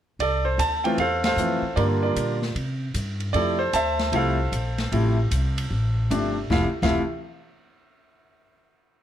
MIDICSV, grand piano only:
0, 0, Header, 1, 2, 480
1, 0, Start_track
1, 0, Key_signature, -1, "major"
1, 0, Tempo, 393701
1, 237, Time_signature, 4, 2, 24, 8
1, 11008, End_track
2, 0, Start_track
2, 0, Title_t, "Grand piano"
2, 0, Program_c, 0, 0
2, 247, Note_on_c, 0, 74, 86
2, 269, Note_on_c, 0, 69, 60
2, 547, Note_on_c, 0, 72, 74
2, 562, Note_off_c, 0, 74, 0
2, 720, Note_off_c, 0, 72, 0
2, 722, Note_on_c, 0, 81, 87
2, 1009, Note_off_c, 0, 81, 0
2, 1027, Note_on_c, 0, 79, 77
2, 1035, Note_on_c, 0, 52, 63
2, 1041, Note_on_c, 0, 57, 57
2, 1047, Note_on_c, 0, 60, 55
2, 1053, Note_on_c, 0, 65, 68
2, 1162, Note_off_c, 0, 69, 0
2, 1182, Note_off_c, 0, 52, 0
2, 1182, Note_off_c, 0, 79, 0
2, 1184, Note_off_c, 0, 57, 0
2, 1187, Note_off_c, 0, 60, 0
2, 1190, Note_off_c, 0, 65, 0
2, 1217, Note_on_c, 0, 77, 88
2, 1231, Note_on_c, 0, 69, 63
2, 1238, Note_on_c, 0, 72, 66
2, 1496, Note_off_c, 0, 77, 0
2, 1529, Note_on_c, 0, 77, 82
2, 1535, Note_off_c, 0, 72, 0
2, 1536, Note_off_c, 0, 69, 0
2, 1553, Note_on_c, 0, 72, 67
2, 1554, Note_on_c, 0, 69, 58
2, 1692, Note_on_c, 0, 52, 53
2, 1698, Note_on_c, 0, 57, 49
2, 1700, Note_on_c, 0, 60, 51
2, 1702, Note_on_c, 0, 65, 56
2, 1964, Note_off_c, 0, 52, 0
2, 1967, Note_off_c, 0, 57, 0
2, 1968, Note_off_c, 0, 60, 0
2, 1968, Note_off_c, 0, 65, 0
2, 2133, Note_off_c, 0, 69, 0
2, 2133, Note_off_c, 0, 72, 0
2, 2145, Note_on_c, 0, 74, 83
2, 2155, Note_on_c, 0, 65, 56
2, 2157, Note_on_c, 0, 70, 62
2, 2167, Note_on_c, 0, 50, 54
2, 2172, Note_on_c, 0, 55, 48
2, 2176, Note_on_c, 0, 58, 52
2, 2183, Note_off_c, 0, 77, 0
2, 2217, Note_off_c, 0, 74, 0
2, 2464, Note_off_c, 0, 70, 0
2, 2470, Note_off_c, 0, 65, 0
2, 2471, Note_on_c, 0, 74, 69
2, 2482, Note_on_c, 0, 70, 49
2, 2489, Note_on_c, 0, 65, 51
2, 2889, Note_off_c, 0, 50, 0
2, 2892, Note_off_c, 0, 55, 0
2, 2894, Note_off_c, 0, 58, 0
2, 2915, Note_off_c, 0, 74, 0
2, 3076, Note_off_c, 0, 70, 0
2, 3080, Note_off_c, 0, 65, 0
2, 4060, Note_on_c, 0, 74, 96
2, 4073, Note_on_c, 0, 48, 52
2, 4082, Note_on_c, 0, 53, 46
2, 4086, Note_on_c, 0, 57, 49
2, 4089, Note_on_c, 0, 64, 56
2, 4090, Note_on_c, 0, 69, 62
2, 4354, Note_off_c, 0, 48, 0
2, 4359, Note_off_c, 0, 53, 0
2, 4361, Note_off_c, 0, 57, 0
2, 4363, Note_off_c, 0, 64, 0
2, 4374, Note_on_c, 0, 72, 79
2, 4389, Note_off_c, 0, 74, 0
2, 4553, Note_off_c, 0, 72, 0
2, 4556, Note_on_c, 0, 81, 92
2, 4580, Note_on_c, 0, 76, 72
2, 4583, Note_on_c, 0, 72, 69
2, 4994, Note_off_c, 0, 69, 0
2, 5022, Note_on_c, 0, 48, 60
2, 5030, Note_on_c, 0, 53, 53
2, 5030, Note_on_c, 0, 57, 55
2, 5034, Note_on_c, 0, 64, 66
2, 5049, Note_off_c, 0, 81, 0
2, 5069, Note_on_c, 0, 77, 82
2, 5074, Note_off_c, 0, 72, 0
2, 5085, Note_on_c, 0, 69, 65
2, 5093, Note_on_c, 0, 72, 63
2, 5310, Note_off_c, 0, 48, 0
2, 5314, Note_off_c, 0, 53, 0
2, 5314, Note_off_c, 0, 57, 0
2, 5316, Note_off_c, 0, 64, 0
2, 5479, Note_off_c, 0, 76, 0
2, 5997, Note_on_c, 0, 48, 61
2, 6000, Note_on_c, 0, 53, 56
2, 6014, Note_on_c, 0, 57, 53
2, 6016, Note_on_c, 0, 64, 64
2, 6278, Note_off_c, 0, 48, 0
2, 6280, Note_off_c, 0, 53, 0
2, 6286, Note_off_c, 0, 57, 0
2, 6287, Note_off_c, 0, 64, 0
2, 7407, Note_off_c, 0, 77, 0
2, 7415, Note_off_c, 0, 69, 0
2, 7419, Note_off_c, 0, 72, 0
2, 7442, Note_on_c, 0, 48, 54
2, 7453, Note_on_c, 0, 53, 49
2, 7453, Note_on_c, 0, 62, 59
2, 7456, Note_on_c, 0, 57, 47
2, 7722, Note_off_c, 0, 48, 0
2, 7727, Note_off_c, 0, 53, 0
2, 7728, Note_off_c, 0, 62, 0
2, 7729, Note_off_c, 0, 57, 0
2, 7927, Note_on_c, 0, 48, 59
2, 7930, Note_on_c, 0, 53, 55
2, 7931, Note_on_c, 0, 57, 55
2, 7935, Note_on_c, 0, 64, 67
2, 7954, Note_on_c, 0, 77, 73
2, 8111, Note_off_c, 0, 48, 0
2, 8112, Note_off_c, 0, 53, 0
2, 8112, Note_off_c, 0, 77, 0
2, 8113, Note_off_c, 0, 57, 0
2, 8115, Note_off_c, 0, 64, 0
2, 8326, Note_on_c, 0, 48, 63
2, 8326, Note_on_c, 0, 77, 73
2, 8332, Note_on_c, 0, 53, 58
2, 8335, Note_on_c, 0, 57, 60
2, 8340, Note_on_c, 0, 64, 73
2, 8530, Note_off_c, 0, 48, 0
2, 8533, Note_off_c, 0, 53, 0
2, 8534, Note_off_c, 0, 57, 0
2, 8537, Note_off_c, 0, 64, 0
2, 8545, Note_off_c, 0, 77, 0
2, 11008, End_track
0, 0, End_of_file